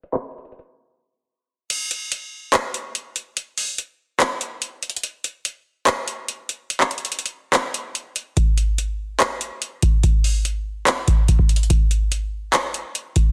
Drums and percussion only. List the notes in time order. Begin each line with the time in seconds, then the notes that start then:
0.03 closed hi-hat
0.14 clap
0.24 closed hi-hat
0.31 closed hi-hat
0.38 closed hi-hat
0.45 closed hi-hat
0.52 closed hi-hat
0.59 closed hi-hat
1.70 closed hi-hat, crash
1.91 closed hi-hat
2.12 closed hi-hat
2.53 clap, closed hi-hat
2.74 closed hi-hat
2.95 closed hi-hat
3.16 closed hi-hat
3.37 closed hi-hat
3.58 open hi-hat
3.78 closed hi-hat
4.20 clap, closed hi-hat
4.41 closed hi-hat
4.62 closed hi-hat
4.83 closed hi-hat
4.90 closed hi-hat
4.96 closed hi-hat
5.03 closed hi-hat
5.24 closed hi-hat
5.45 closed hi-hat
5.87 clap, closed hi-hat
6.08 closed hi-hat
6.28 closed hi-hat
6.49 closed hi-hat
6.70 closed hi-hat
6.80 clap
6.91 closed hi-hat, open hi-hat
6.98 closed hi-hat
7.05 closed hi-hat
7.12 closed hi-hat
7.19 closed hi-hat
7.26 closed hi-hat
7.53 clap, closed hi-hat
7.74 closed hi-hat
7.95 closed hi-hat
8.16 closed hi-hat
8.37 kick, closed hi-hat
8.58 closed hi-hat
8.78 closed hi-hat
9.20 clap, closed hi-hat
9.41 closed hi-hat
9.62 closed hi-hat
9.82 kick, closed hi-hat
10.03 kick, closed hi-hat
10.24 open hi-hat
10.45 closed hi-hat
10.87 clap, closed hi-hat
11.08 kick, closed hi-hat
11.28 kick, closed hi-hat
11.39 kick
11.49 closed hi-hat
11.56 closed hi-hat
11.63 closed hi-hat
11.70 kick, closed hi-hat
11.91 closed hi-hat
12.12 closed hi-hat
12.53 clap, closed hi-hat
12.74 closed hi-hat
12.95 closed hi-hat
13.16 kick, closed hi-hat